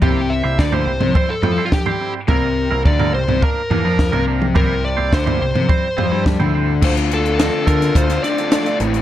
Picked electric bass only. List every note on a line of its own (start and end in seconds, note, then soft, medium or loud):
0.02 0.42 C2 medium
0.44 0.58 C2 medium
0.59 0.85 D2 medium
0.86 1.00 C2 medium
1.00 1.14 C2 medium
1.43 1.56 F2 loud
2.29 2.68 C2 medium
2.71 2.84 C2 medium
2.86 3.12 D2 medium
3.14 3.27 C2 medium
3.28 3.41 C2 medium
3.70 3.84 E2 medium
3.85 4.11 F2 loud
4.13 4.53 C2 medium
4.56 4.95 C2 medium
4.99 5.12 C2 medium
5.13 5.39 D2 medium
5.41 5.54 C2 medium
5.55 5.68 C2 medium
5.98 6.11 F2 loud
6.12 6.38 G2 medium
6.40 6.80 D2 medium
6.82 7.49 D2 medium
7.68 7.90 D3 loud
7.95 8.18 D2 loud
8.80 9.02 A1 loud